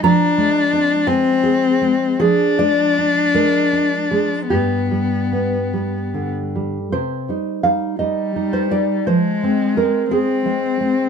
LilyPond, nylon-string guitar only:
\new Staff \with { instrumentName = "Nylon-string guitar" } { \time 6/8 \key c \minor \tempo 4. = 56 << { bes''4. aes''4. | aes'8 d''4 bes'4 aes'8 | g'2~ g'8 r8 | c''4 f''8 ees''8. c''16 d''8 |
c''4 bes'8 aes'4. | } \\ { f8 aes8 c'8 aes8 aes'8 aes8 | f8 aes8 d'8 aes8 d'8 aes8 | g,8 g8 b8 g8 d8 g8 | c8 <g ees'>8 <g ees'>8 <g ees'>8 <g ees'>8 <g ees'>8 |
f8 <aes c'>8 <aes c'>8 <aes c'>8 <aes c'>8 <aes c'>8 | } >> }